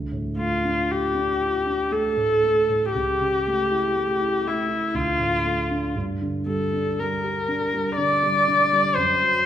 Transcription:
Already playing: D2
0.12 A2
0.37 A3 F4
0.65 D4
0.90 F4 G4
1.15 D4
1.40 F4
1.66 D4
1.91 A3 A4
2.16 A2
2.43 A3
2.69 A2
2.92 C#2 G4
3.21 C#3
3.47 A3
3.71 E4
3.97 A3
4.21 E4
4.44 A3 E4
4.69 E4
4.94 D2 F4
5.19 A2
5.45 A3
5.71 D4
5.95 G2
6.21 D3
6.46 G3 A4
6.73 D4
7.00 G3 A#4
7.24 G4
7.48 D4
7.74 G3
7.97 D3 D5
8.22 G3
8.48 D3
8.72 G3
8.95 F#2 C5
9.22 F#3

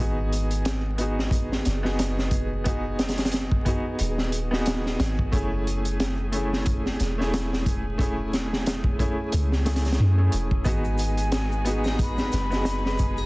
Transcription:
Already playing: B3 G#4
0.00 G#1 D#4 F#4 G#4
0.32 closed hi-hat
0.51 closed hi-hat
0.65 snare, closed hi-hat
0.98 B3 D#4 F#4 G#4, closed hi-hat
1.19 snare
1.31 kick, closed hi-hat
1.52 snare
1.65 F#1, snare, closed hi-hat
1.83 B3 D#4 F#4 G#4, snare
1.99 snare, closed hi-hat
2.19 snare
2.31 kick, closed hi-hat
2.64 B3 D#4 F#4 G#4, kick, closed hi-hat
2.99 snare, closed hi-hat
3.08 snare, closed hi-hat
3.17 snare, closed hi-hat
3.25 snare, closed hi-hat
3.31 snare, closed hi-hat
3.51 kick
3.65 B3 D#4 F#4 G#4, kick, closed hi-hat
3.99 D#1, closed hi-hat
4.18 snare
4.32 closed hi-hat
4.51 B3 D#4 F#4 G#4, snare
4.66 snare, closed hi-hat
4.86 snare
5.00 G#1, snare, closed hi-hat
5.19 kick
5.32 F#1 A3 C#4 E4 G#4, kick, closed hi-hat
5.67 closed hi-hat
5.85 closed hi-hat
6.00 snare, closed hi-hat
6.32 A3 C#4 E4 G#4, closed hi-hat
6.53 snare
6.66 kick, closed hi-hat
6.86 snare
7.00 E1, snare, closed hi-hat
7.18 A3 C#4 E4 G#4, snare
7.34 snare, closed hi-hat
7.53 snare
7.66 kick, closed hi-hat
7.98 A3 C#4 E4 G#4, kick, closed hi-hat
8.33 snare, closed hi-hat
8.53 snare
8.66 snare, closed hi-hat
8.84 kick
8.99 A3 C#4 E4 G#4, kick, closed hi-hat
9.32 C#2, closed hi-hat
9.52 snare
9.65 A3 C#4 E4 G#4, snare, closed hi-hat
9.76 snare, closed hi-hat
9.85 snare, closed hi-hat
9.92 snare, closed hi-hat
10.00 F#2
10.18 A3 C#4 E4 G#4
10.32 E1, closed hi-hat
10.51 kick
10.64 G#1 G#3 B3 D#4 F#4 G#4 B4 G#5, kick, closed hi-hat, shaker
10.85 shaker
10.98 closed hi-hat, shaker
11.17 closed hi-hat, shaker
11.32 snare, closed hi-hat, shaker
11.52 shaker
11.65 B3 D#4 F#4 G#4, closed hi-hat, shaker
11.84 snare, triangle, shaker
11.99 B5, kick, closed hi-hat, shaker
12.18 snare, shaker
12.32 F#1, snare, closed hi-hat, shaker
12.50 B3 D#4 F#4 G#4, snare, shaker
12.65 snare, closed hi-hat, shaker
12.86 snare
12.98 kick, closed hi-hat, shaker
13.18 triangle, shaker

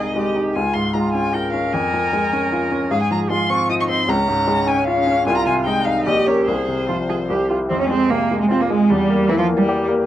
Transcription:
Already playing: C2 C3 G#3 D#4 G#4 D#5
0.16 G#3 G4
0.35 D#4
0.54 C#2 F4 G#5
0.74 G#2 C6
0.93 G#3 F4 A#5
1.13 C#4 G#5
1.34 F4 A#4 G5
1.53 C#4 F5
1.73 F2 G#5
1.94 F3
2.13 G#3
2.33 C#4
2.52 F4
2.72 C#4
2.91 G#2 G#4 F5
3.02 G#5
3.11 F3 A#5
3.30 G#3 F4 C6
3.50 C4 C#6
3.69 D#4 F4 D#6
3.81 C#6
3.89 C4 C6
4.08 C#2 C#4 A#5
4.28 G#2
4.48 G#3
4.67 C#4 G#5
4.87 F4 F5
5.07 C#4
5.26 C2 F4 G#5
5.37 A#5
5.46 C3 G#5
5.65 G#3 D#4 G5
5.85 D#4 F5
6.06 A#1 G4 D#5
6.27 C#4 A#4 C#5
6.47 C2 G#4 C5
6.68 C3
6.88 F3 F4
7.09 F4 G#4
7.29 C2 G4
7.49 E4 F4 G4
7.69 F2 C4
7.80 C#4
7.89 G#3 C4
8.10 C3 A#3
8.31 G#3
8.41 G#3
8.50 C4 F4
8.60 A#3
8.69 G#3
8.89 E2 G3
9.09 A#3
9.28 E3 E4
9.38 F3 F4
9.49 A#3
9.57 G3
9.68 G4
9.88 A#3

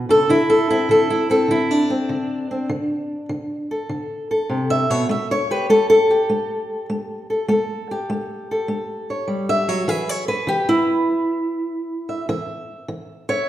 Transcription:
Already playing: E3
0.09 C#3 A4
0.29 D3 E4
0.50 A4
0.70 C4 E4
0.89 D3 A4
1.10 E4
1.30 C4 A4
1.48 D3 E4
1.71 D4
1.90 C4
2.09 D3
2.51 C4
2.69 D3
3.29 D3
3.71 A4
3.89 D3
4.31 A4
4.49 C3
4.70 E5
4.90 B2 C#5
5.09 A3 E5
5.31 C#5
5.51 G4 B4
5.70 A3 A4
5.90 A4
6.11 G4
6.29 A3
6.90 A3
7.30 A4
7.48 A3 A4
7.91 G4
8.10 A3
8.51 A4
8.68 A3
9.10 C#5
9.28 G3
9.49 E5
9.68 F#3 C#5
9.88 E3 G#4 B4 E5
10.09 C#5
10.28 G#4 B4
10.47 E3 G4
10.69 E4
12.09 E5
12.29 E3 E5
12.88 E3
13.29 C#5 E5

